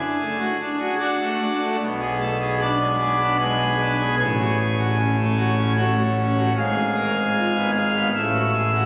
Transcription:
0.00 0.16 D4 medium
0.00 0.94 G#4 medium
0.00 0.94 G#5 loud
0.20 0.37 A3 medium
0.39 0.57 F#4 medium
0.60 0.77 D4 medium
0.79 0.97 F#4 medium
0.99 1.17 D4 medium
0.99 1.77 F#4 medium
0.99 1.76 D5 medium
0.99 1.77 F#5 loud
1.20 1.37 A3 medium
1.41 1.57 D4 medium
1.61 1.77 A3 medium
1.80 4.15 B1 medium
1.80 4.15 B2 medium
2.00 2.17 G#4 medium
2.21 2.37 A4 medium
2.40 2.57 G#4 medium
2.60 2.77 D4 medium
2.60 3.37 D5 medium
2.60 3.36 B5 medium
2.60 3.37 D6 loud
2.81 2.97 G#3 medium
2.99 3.16 G#4 medium
3.19 3.37 D4 medium
3.39 3.56 G#3 medium
3.39 4.16 B4 medium
3.39 4.16 G#5 medium
3.39 4.16 B5 loud
3.59 3.76 G#4 medium
3.80 3.97 D4 medium
3.99 4.15 G#4 medium
4.19 6.51 A1 medium
4.19 6.51 A2 medium
4.19 4.56 G#4 loud
4.19 5.73 C#5 loud
4.19 5.72 G#5 loud
4.38 4.55 F#4 medium
4.58 4.75 G#4 medium
4.78 4.95 F#4 medium
4.98 5.15 C#4 medium
5.17 5.34 A3 medium
5.36 5.54 F#4 medium
5.57 5.74 C#4 medium
5.77 5.94 A3 medium
5.77 5.94 F#4 medium
5.77 6.53 C#5 medium
5.77 6.53 F#5 medium
5.96 6.13 F#4 medium
6.17 6.34 C#4 medium
6.38 6.53 F#4 medium
6.57 8.10 G#1 medium
6.57 8.10 G#2 medium
6.57 6.75 G#4 medium
6.57 7.71 F5 medium
6.57 7.71 G#5 loud
6.76 6.93 G#4 medium
6.96 7.12 A#4 medium
7.15 7.32 G#4 medium
7.35 7.52 F4 medium
7.55 7.72 B3 medium
7.75 7.92 G#4 medium
7.75 8.08 F5 medium
7.75 8.08 F6 loud
7.95 8.11 B3 medium
8.14 8.86 A1 medium
8.14 8.86 A2 medium
8.14 8.86 E5 medium
8.14 8.86 E6 loud
8.34 8.51 F#4 medium
8.54 8.70 G#4 medium
8.74 8.86 F#4 medium

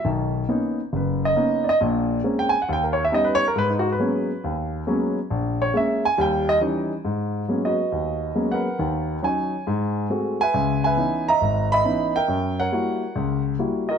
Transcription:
0.05 0.43 B1 medium
0.05 0.43 D#3 medium
0.49 0.79 A#3 medium
0.49 0.79 B3 medium
0.49 0.79 C#4 medium
0.49 0.80 D#4 medium
0.93 1.31 F#1 medium
0.93 1.23 B4 medium
1.25 1.64 D#5 medium
1.36 1.67 A#3 medium
1.36 1.67 B3 soft
1.36 1.67 C#4 soft
1.36 1.67 D#4 medium
1.64 1.66 D5 medium
1.69 1.77 D#5 loud
1.81 2.19 A#1 medium
1.81 2.19 A#2 medium
2.24 2.54 G#3 medium
2.24 2.55 A#3 medium
2.24 2.55 C4 soft
2.24 2.55 C#4 medium
2.39 2.53 G5 medium
2.49 2.58 G#5 loud
2.62 2.68 F#5 medium
2.69 3.06 D#2 medium
2.69 2.84 G5 medium
2.84 2.97 A#4 medium
2.93 3.02 C#5 medium
3.05 3.12 E5 medium
3.12 3.42 G3 medium
3.12 3.43 B3 medium
3.12 3.43 C#4 medium
3.12 3.43 D#4 medium
3.12 3.27 D#5 loud
3.25 3.39 B4 medium
3.35 3.45 C#5 loud
3.48 3.55 A#4 medium
3.56 3.94 G#2 medium
3.56 3.71 B4 loud
3.70 3.84 D#4 medium
3.79 3.89 F#4 medium
3.92 4.54 B4 medium
3.99 4.30 F#3 medium
3.99 4.30 G#3 medium
3.99 4.30 A#3 medium
3.99 4.30 B3 soft
3.99 4.30 C#4 medium
4.44 4.81 D#2 medium
4.87 5.17 F#3 medium
4.87 5.18 G#3 medium
4.87 5.18 A#3 medium
4.87 5.18 B3 medium
4.87 5.18 C#4 medium
5.30 5.68 A#1 medium
5.62 5.75 C#5 medium
5.74 6.04 G#3 medium
5.74 6.05 A#3 medium
5.74 6.05 C#4 medium
5.74 6.04 E5 medium
6.05 6.19 G#5 loud
6.18 6.56 D#2 medium
6.18 6.56 G3 medium
6.18 6.48 G5 loud
6.49 6.57 D#5 loud
6.61 6.92 E3 medium
6.61 6.92 G3 medium
6.61 6.92 C#4 medium
6.61 6.92 D#4 medium
7.05 7.43 G#2 medium
7.48 7.79 F#3 medium
7.48 7.79 G#3 soft
7.48 7.79 A#3 soft
7.48 7.79 B3 soft
7.48 7.79 C#4 medium
7.65 8.48 F#4 medium
7.65 8.48 B4 medium
7.65 8.54 D#5 medium
7.92 8.30 D#2 medium
8.35 8.66 F#3 soft
8.35 8.66 G#3 soft
8.35 8.66 A#3 soft
8.35 8.66 B3 soft
8.35 8.66 C#4 medium
8.52 8.80 A#4 medium
8.52 9.21 B4 medium
8.52 9.20 F#5 medium
8.79 9.17 D#2 medium
8.79 9.17 D#3 medium
9.22 9.53 F#3 medium
9.22 9.53 C#4 soft
9.22 9.54 D#4 medium
9.22 9.65 C#5 medium
9.22 10.36 G#5 medium
9.67 10.05 G#2 medium
10.10 10.41 G#3 soft
10.10 10.41 A3 medium
10.10 10.41 C4 soft
10.10 10.41 F#4 medium
10.41 10.85 B4 medium
10.41 10.84 E5 medium
10.41 10.83 G#5 loud
10.54 10.92 C#2 medium
10.84 11.68 B4 medium
10.84 11.28 E5 medium
10.84 11.28 G#5 medium
10.97 11.28 E3 medium
10.97 11.28 B3 medium
10.97 11.28 C#4 soft
10.97 11.28 D#4 medium
11.28 11.72 D#5 medium
11.28 11.72 E5 medium
11.28 11.68 A#5 loud
11.41 11.79 G#1 medium
11.72 12.26 D#5 medium
11.72 12.15 E5 medium
11.72 12.12 B5 loud
11.84 12.15 E3 medium
11.84 12.15 B3 soft
11.84 12.15 C#4 soft
11.84 12.15 D#4 medium
12.16 12.59 A#4 medium
12.16 12.98 E5 medium
12.16 12.59 G5 loud
12.28 12.66 F#2 medium
12.60 13.42 A#4 medium
12.60 13.42 C#5 medium
12.60 13.41 F#5 loud
12.72 13.02 G3 soft
12.72 13.02 A#3 soft
12.72 13.02 E4 soft
12.72 13.03 F#4 medium
13.16 13.53 C#2 medium
13.59 13.89 G3 medium
13.59 13.89 A#3 soft
13.59 13.89 E4 soft
13.59 13.90 F#4 medium
13.89 13.98 F#4 medium
13.89 13.98 A#4 medium
13.89 13.98 D#5 medium

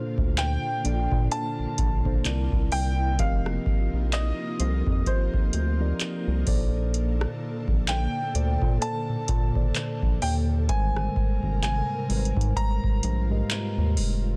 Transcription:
0.00 0.67 A#2 loud
0.00 2.23 D3 medium
0.00 0.68 A#3 medium
0.00 14.37 A#3 medium
0.00 0.68 D4 medium
0.00 2.23 F4 medium
0.00 0.68 A4 medium
0.00 0.68 C5 loud
0.18 0.57 D2 medium
0.18 kick medium
0.38 1.35 G5 loud
0.38 clap loud
0.38 closed hi-hat medium
0.84 1.08 A#1 loud
0.84 1.86 A#2 medium
0.84 1.86 A#3 medium
0.84 1.86 D4 medium
0.84 1.86 A4 medium
0.84 1.87 D5 medium
0.84 closed hi-hat medium
1.12 1.28 A#2 medium
1.12 kick loud
1.31 2.77 A5 loud
1.31 closed hi-hat medium
1.59 1.67 A#1 soft
1.78 2.18 A#1 medium
1.78 kick loud
1.78 closed hi-hat medium
2.05 2.25 A#2 medium
2.05 2.25 A#3 medium
2.05 2.25 D4 medium
2.05 2.26 A4 medium
2.05 2.26 C5 medium
2.05 kick loud
2.24 2.48 C2 loud
2.24 3.07 C3 medium
2.24 3.18 C3 medium
2.24 3.08 C4 medium
2.24 3.08 E4 medium
2.24 3.18 E4 medium
2.24 3.08 A#4 medium
2.24 3.08 D5 medium
2.24 clap loud
2.24 closed hi-hat medium
2.52 2.69 C2 medium
2.52 kick medium
2.72 3.20 C2 medium
2.72 3.21 G5 loud
2.72 open hi-hat medium
3.18 3.58 F1 loud
3.18 4.42 F3 medium
3.18 4.43 C4 medium
3.18 6.44 D#4 medium
3.18 6.44 F4 medium
3.18 4.43 G4 medium
3.18 4.43 A#4 medium
3.18 4.43 D#5 medium
3.18 4.16 F5 loud
3.18 kick loud
3.18 closed hi-hat medium
3.46 cross-stick medium
3.66 kick loud
3.93 4.32 A#1 medium
4.13 5.10 D#5 medium
4.13 clap loud
4.13 closed hi-hat medium
4.59 4.82 C2 medium
4.59 5.61 F3 medium
4.59 5.61 C4 medium
4.59 5.61 G4 medium
4.59 4.67 A4 medium
4.59 6.36 C5 medium
4.59 5.62 D#5 medium
4.59 closed hi-hat medium
4.67 5.65 A#4 medium
4.87 5.03 F2 loud
4.87 kick loud
4.92 6.63 D#5 medium
5.06 6.43 C5 medium
5.06 kick loud
5.06 closed hi-hat medium
5.34 5.42 D2 soft
5.34 kick loud
5.53 5.93 D2 medium
5.53 closed hi-hat medium
5.80 6.47 F3 medium
5.80 6.47 C4 medium
5.80 6.47 G4 medium
5.80 6.47 A#4 medium
5.80 6.47 D5 medium
6.00 clap loud
6.00 closed hi-hat medium
6.27 6.44 C2 medium
6.46 7.26 A#1 loud
6.46 8.11 A#2 loud
6.46 10.65 D3 medium
6.46 8.11 A#3 medium
6.46 10.65 A4 loud
6.46 8.11 A4 medium
6.46 8.11 C5 medium
6.46 8.12 D5 loud
6.46 kick loud
6.46 open hi-hat medium
6.94 closed hi-hat medium
7.21 cross-stick loud
7.68 8.07 A#1 medium
7.68 kick medium
7.88 8.78 G5 medium
7.88 clap loud
7.88 closed hi-hat medium
8.34 8.58 D2 medium
8.34 9.36 A#2 medium
8.34 9.36 A#3 medium
8.34 9.36 A4 medium
8.34 9.36 C5 medium
8.34 9.37 D5 medium
8.34 closed hi-hat medium
8.62 8.78 A#2 loud
8.62 kick loud
8.81 10.58 A4 medium
8.81 10.27 A5 loud
8.81 closed hi-hat medium
9.09 9.17 A#2 soft
9.28 9.68 A#2 medium
9.28 kick loud
9.28 closed hi-hat medium
9.55 10.54 A#2 medium
9.55 10.55 A#3 medium
9.55 10.55 A4 medium
9.55 10.55 C5 medium
9.55 10.55 D5 medium
9.55 kick loud
9.75 clap loud
9.75 closed hi-hat medium
10.02 10.19 A#1 medium
10.02 kick medium
10.22 10.71 D#2 medium
10.22 10.33 G5 medium
10.22 open hi-hat medium
10.68 11.08 G#1 loud
10.68 11.92 G#2 medium
10.68 14.37 C3 medium
10.68 11.93 G3 medium
10.68 11.93 G#3 medium
10.68 12.55 A#4 medium
10.68 11.93 A#4 medium
10.68 11.93 C5 medium
10.68 11.61 G#5 loud
10.68 kick loud
10.68 closed hi-hat medium
10.96 cross-stick medium
11.16 kick loud
11.43 11.82 G#1 medium
11.43 kick medium
11.63 12.59 G#5 loud
11.63 clap loud
11.63 closed hi-hat medium
12.08 12.33 G#1 medium
12.08 13.11 G#2 medium
12.08 13.11 G3 medium
12.08 13.11 G#3 medium
12.08 13.11 A#4 medium
12.08 12.18 B4 medium
12.08 closed hi-hat medium
12.08 open hi-hat medium
12.17 13.15 C5 medium
12.25 closed hi-hat medium
12.37 12.53 G#2 medium
12.37 kick loud
12.41 closed hi-hat medium
12.56 14.37 F4 medium
12.56 14.33 C5 medium
12.56 13.93 A#5 loud
12.56 kick loud
12.56 closed hi-hat medium
12.84 12.92 A#1 soft
12.84 kick loud
13.03 13.43 A#1 loud
13.03 closed hi-hat medium
13.30 14.30 G#2 medium
13.30 14.30 G#3 medium
13.30 14.30 G4 medium
13.30 14.30 A#4 medium
13.30 14.30 D#5 medium
13.50 clap loud
13.50 closed hi-hat medium
13.78 13.99 D#2 medium
13.97 14.37 F1 medium
13.97 open hi-hat medium

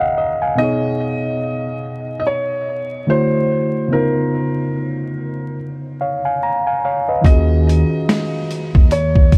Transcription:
0.00 0.52 C#3 medium
0.00 0.53 C#4 medium
0.00 0.54 F#4 medium
0.00 0.55 G#4 medium
0.00 0.56 A#4 medium
0.00 0.18 D#5 medium
0.00 0.43 F5 medium
0.00 0.59 F#5 medium
0.00 0.42 G#5 medium
0.00 0.59 A#5 medium
0.18 0.56 D#5 medium
0.42 0.81 F5 medium
0.42 0.80 G#5 medium
0.55 3.02 B2 medium
0.55 3.04 B3 medium
0.55 2.15 D#5 loud
0.60 3.05 D#4 medium
0.60 3.06 G#4 medium
0.64 3.07 C#5 medium
2.20 2.25 D#5 medium
2.27 3.11 C#5 medium
3.07 3.91 D3 medium
3.07 3.91 A3 medium
3.07 3.92 E4 medium
3.07 3.92 F#4 medium
3.07 3.94 C5 medium
3.11 3.93 C5 medium
3.88 7.19 C#3 medium
3.88 7.20 B3 medium
3.92 7.21 D#4 medium
3.92 7.22 F4 medium
3.92 5.54 A#4 medium
3.97 5.98 A#4 medium
6.01 6.23 C#5 medium
6.01 6.23 F5 medium
6.25 6.41 F5 medium
6.25 6.41 G#5 medium
6.43 6.64 A#5 medium
6.67 6.83 F5 medium
6.67 6.83 G#5 medium
6.85 7.06 C#5 medium
6.85 7.06 F5 medium
7.08 7.47 B4 medium
7.08 7.47 D#5 medium
7.22 7.81 D#2 medium
7.22 9.38 D#3 medium
7.22 9.38 C#4 medium
7.22 8.88 D#5 loud
7.22 kick loud
7.26 9.38 F4 medium
7.26 9.38 F#4 medium
7.26 closed hi-hat medium
7.30 9.38 G#4 medium
7.69 closed hi-hat medium
8.09 snare loud
8.09 closed hi-hat medium
8.51 closed hi-hat medium
8.75 9.38 D#2 medium
8.75 kick loud
8.91 9.38 C#5 medium
8.91 closed hi-hat medium
9.16 kick medium
9.32 kick medium
9.32 closed hi-hat medium

